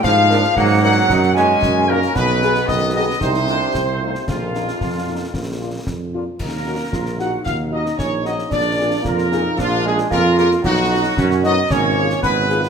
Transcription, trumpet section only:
X:1
M:2/4
L:1/8
Q:1/4=113
K:Ebm
V:1 name="Trumpet section"
f2 g g- | g a2 B | c2 e e | =c4 |
F4- | F2 z2 | B3 g | f e d e |
=d2 B2 | F A B B | ^F3 ^d | d2 c2 |]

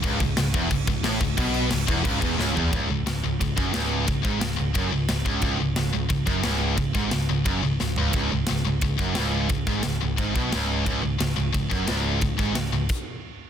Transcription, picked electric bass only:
X:1
M:4/4
L:1/8
Q:1/4=177
K:C#m
V:1 name="Picked electric bass" clef=bass
C,,, C,,, C,,, E,,, C,,, C,,, A,,, C,,, | B,,,2 C,,, E,,, C,,, E,,, C,,, E,,, | C,,, C,,, C,,, C,,, C,,, F,,, C,,,2 | C,,, G,,, C,,, C,,, F,,, C,,, C,,, C,,, |
C,,, C,,, C,,, C,,, C,,, F,,, C,,,2 | C,,, G,,, C,,, C,,, F,,, C,,, C,,, C,,, | C,,, C,,, C,,, C,,, C,,, F,,, C,,,2 | C,,, G,,, C,,, C,,, G,,, B,,, C,,,2 |
C,,, C,,, C,,, C,,, C,,, F,,, C,,,2 | C,,, G,,, C,,, C,,, z4 |]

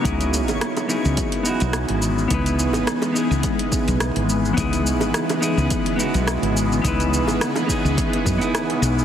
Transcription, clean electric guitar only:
X:1
M:4/4
L:1/16
Q:"Swing 16ths" 1/4=106
K:C#m
V:1 name="Clean electric guitar"
[B,DEG]6 [B,DEG]4 [B,DEF]6 | [B,DEB]6 [B,DEG]8- [B,DEG]2 | [B,DEG]6 [B,DEG]4 [B,DEF]6 | [B,DEB]6 [B,DEG]4- [B,DEG] [B,DEG]4- [B,DEG] |]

